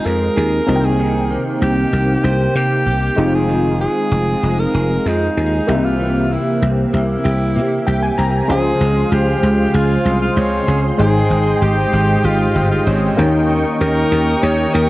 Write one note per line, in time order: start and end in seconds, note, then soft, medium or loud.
0.00 0.68 D#3 medium
0.00 0.63 G#3 medium
0.00 0.64 C4 medium
0.00 1.33 C4 soft
0.00 0.64 D#4 medium
0.00 0.64 F4 medium
0.00 0.35 G#4 medium
0.05 0.28 F2 medium
0.05 0.74 G#3 medium
0.05 0.86 A#4 loud
0.36 0.59 D#2 medium
0.36 0.74 G#4 medium
0.66 1.36 C2 medium
0.66 1.58 C3 medium
0.66 0.98 D#3 medium
0.66 3.13 A#3 medium
0.66 3.14 C4 medium
0.66 3.14 D#4 medium
0.66 0.75 F4 medium
0.75 3.18 G5 medium
0.84 1.35 G#4 loud
0.99 3.17 D#3 medium
1.30 1.91 A#3 medium
1.61 1.84 C2 medium
1.61 4.11 C4 medium
1.61 2.26 G4 loud
1.92 2.15 C2 medium
1.92 2.54 A#3 medium
2.24 2.47 C2 medium
2.24 2.85 G4 medium
2.24 2.56 C5 loud
2.55 2.88 C3 medium
2.55 3.24 A#3 medium
2.55 3.36 G4 loud
2.86 3.09 C2 medium
2.86 3.24 G4 medium
3.16 3.85 F1 medium
3.16 3.48 D#3 medium
3.16 5.63 G#3 medium
3.16 5.64 C4 medium
3.16 5.64 D#4 medium
3.16 5.64 F4 medium
3.35 3.81 G#4 loud
3.49 5.68 D#3 medium
3.81 4.42 G#3 medium
3.81 4.61 G#4 loud
4.12 4.34 F1 loud
4.12 6.34 C4 medium
4.43 4.65 F1 medium
4.43 5.04 G#3 medium
4.59 5.09 A#4 medium
4.74 4.97 F1 medium
4.74 5.36 G#4 medium
5.05 5.28 F2 medium
5.05 5.74 G#3 medium
5.05 5.86 D#4 medium
5.37 5.59 D#2 medium
5.37 5.74 G#4 medium
5.67 6.36 C2 medium
5.67 6.58 C3 medium
5.67 5.98 E3 medium
5.67 8.13 A#3 medium
5.67 8.14 C4 medium
5.67 8.15 G4 medium
5.67 8.14 E5 medium
5.85 6.33 F4 medium
6.00 8.49 E3 medium
6.31 6.92 A#3 medium
6.31 6.67 E4 medium
6.62 6.84 C2 medium
6.62 8.18 C4 soft
6.93 7.16 C2 medium
6.93 7.54 A#3 medium
6.93 8.15 E4 medium
7.24 7.58 C2 medium
7.24 7.86 G4 medium
7.55 7.78 C3 medium
7.55 8.55 A#3 medium
7.87 8.10 C2 medium
7.87 8.56 G4 medium
7.87 8.01 G5 medium
8.02 8.17 G#5 medium
8.18 8.41 C2 medium
8.18 10.36 C4 medium
8.18 8.47 A#5 medium
8.48 8.72 C#2 loud
8.48 9.39 C#3 medium
8.48 10.99 F3 medium
8.48 10.95 G#3 medium
8.48 13.14 G#3 medium
8.48 10.96 F4 medium
8.48 9.15 G#4 loud
8.48 10.95 C5 medium
8.48 10.97 C5 medium
8.48 10.97 F5 medium
8.48 13.14 C6 medium
8.80 9.03 C#2 loud
8.80 9.43 G#3 medium
9.12 9.34 C#2 loud
9.12 9.77 G4 loud
9.12 9.74 G#4 medium
9.43 9.66 C#2 medium
9.43 10.05 G#3 medium
9.74 9.97 C#2 loud
9.74 10.21 F4 medium
9.74 10.67 G#4 medium
10.05 10.28 C2 medium
10.05 11.30 G#3 medium
10.22 10.39 F4 medium
10.37 10.59 C#2 loud
10.37 12.86 C4 medium
10.37 10.84 C#4 medium
10.68 10.90 C#2 medium
10.68 11.61 G#4 medium
10.98 11.22 G#1 loud
10.98 11.89 G#2 medium
10.98 13.17 D#3 medium
10.98 13.13 G#3 medium
10.98 13.14 D#4 medium
10.98 11.64 G#4 loud
10.98 13.14 C5 medium
10.98 14.89 D#5 medium
10.98 13.16 G5 medium
10.98 13.15 G5 medium
11.30 11.53 G#1 medium
11.30 11.91 G#3 medium
11.61 11.84 G#1 loud
11.61 12.24 G4 medium
11.61 12.27 G4 loud
11.93 12.15 G#1 medium
11.93 12.54 G#3 medium
12.24 12.47 G#1 medium
12.24 12.71 F4 medium
12.24 14.12 G4 medium
12.55 12.78 G1 medium
12.55 13.24 G#3 medium
12.72 12.89 F4 medium
12.87 13.09 G#1 medium
12.87 13.24 C4 medium
12.87 13.34 C#4 medium
13.17 13.63 D#2 medium
13.17 13.48 D#3 medium
13.17 14.08 D#3 medium
13.17 14.89 A#3 medium
13.17 14.89 C#4 medium
13.17 14.89 D#4 medium
13.17 14.89 A#4 medium
13.17 14.89 G5 medium
13.17 14.89 C#6 medium
13.49 14.89 D#3 medium
13.81 14.03 D#2 medium
13.81 14.42 A#3 medium
13.81 14.45 A#4 loud
14.12 14.34 D#2 medium
14.12 14.73 G4 medium
14.43 14.65 D#2 loud
14.43 14.89 A#3 medium
14.43 14.76 C#5 loud
14.74 14.89 D#2 loud
14.74 14.89 G4 medium
14.74 14.89 A#4 loud